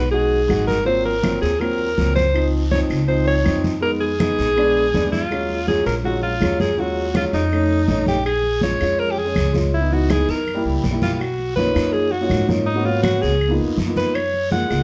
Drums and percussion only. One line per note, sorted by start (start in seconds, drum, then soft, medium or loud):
0.12 high conga soft
0.12 long guiro medium
0.31 high conga soft
0.50 high conga medium
0.50 short guiro medium
0.50 claves medium
0.68 high conga medium
0.68 short guiro medium
0.87 high conga soft
0.87 long guiro medium
1.05 high conga soft
1.23 high conga medium
1.23 short guiro medium
1.23 claves medium
1.42 high conga soft
1.42 short guiro medium
1.60 high conga soft
1.60 long guiro medium
1.60 claves medium
1.79 high conga soft
1.98 high conga medium
1.98 short guiro medium
2.16 high conga medium
2.16 short guiro medium
2.34 high conga soft
2.34 long guiro medium
2.34 claves medium
2.54 high conga soft
2.72 high conga medium
2.72 short guiro medium
2.90 high conga soft
2.90 short guiro medium
2.90 claves medium
3.09 high conga soft
3.09 long guiro medium
3.27 high conga soft
3.46 high conga medium
3.46 short guiro medium
3.46 claves medium
3.64 high conga medium
3.64 short guiro medium
3.83 high conga soft
3.83 long guiro medium
4.01 high conga soft
4.20 high conga medium
4.20 short guiro medium
4.20 claves medium
4.39 high conga soft
4.39 short guiro medium
4.57 high conga soft
4.57 long guiro medium
4.57 claves medium
4.76 high conga soft
4.94 high conga medium
4.94 short guiro medium
5.13 high conga medium
5.13 short guiro medium
5.31 high conga soft
5.31 long guiro medium
5.31 claves medium
5.50 high conga soft
5.68 high conga medium
5.68 short guiro medium
5.86 high conga soft
5.86 short guiro medium
5.86 claves medium
6.04 high conga soft
6.04 long guiro medium
6.23 high conga soft
6.41 high conga medium
6.41 short guiro medium
6.41 claves medium
6.60 high conga medium
6.60 short guiro medium
6.78 high conga soft
6.78 long guiro medium
6.97 high conga soft
7.15 high conga medium
7.15 short guiro medium
7.15 claves medium
7.33 high conga soft
7.33 short guiro medium
7.52 high conga soft
7.52 long guiro medium
7.52 claves medium
7.70 high conga soft
7.88 high conga medium
7.88 short guiro medium
8.06 high conga medium
8.06 short guiro medium
8.25 high conga soft
8.25 long guiro medium
8.25 claves medium
8.43 high conga soft
8.61 high conga medium
8.61 short guiro medium
8.80 high conga soft
8.80 short guiro medium
8.80 claves medium
8.99 high conga soft
8.99 long guiro medium
9.18 high conga soft
9.36 high conga medium
9.36 short guiro medium
9.36 claves medium
9.54 high conga medium
9.54 short guiro medium
9.73 high conga soft
9.73 long guiro medium
9.92 high conga soft
10.10 high conga medium
10.10 short guiro medium
10.10 claves medium
10.29 high conga soft
10.29 short guiro medium
10.47 high conga soft
10.47 long guiro medium
10.47 claves medium
10.65 high conga soft
10.84 high conga medium
10.84 short guiro medium
11.02 high conga medium
11.02 short guiro medium
11.20 high conga soft
11.20 long guiro medium
11.20 claves medium
11.39 high conga soft
11.57 high conga medium
11.57 short guiro medium
11.75 high conga soft
11.75 short guiro medium
11.75 claves medium
11.94 high conga soft
11.94 long guiro medium
12.12 high conga soft
12.30 high conga medium
12.30 short guiro medium
12.30 claves medium
12.49 high conga medium
12.49 short guiro medium
12.67 high conga soft
12.67 long guiro medium
12.85 high conga soft
13.04 high conga medium
13.04 short guiro medium
13.04 claves medium
13.23 high conga soft
13.23 short guiro medium
13.41 high conga soft
13.41 long guiro medium
13.41 claves medium
13.60 high conga soft
13.77 high conga medium
13.77 short guiro medium
13.96 high conga medium
13.96 short guiro medium
14.15 high conga soft
14.15 long guiro medium
14.15 claves medium
14.34 high conga soft
14.51 high conga medium
14.51 short guiro medium
14.70 high conga soft
14.70 short guiro medium
14.70 claves medium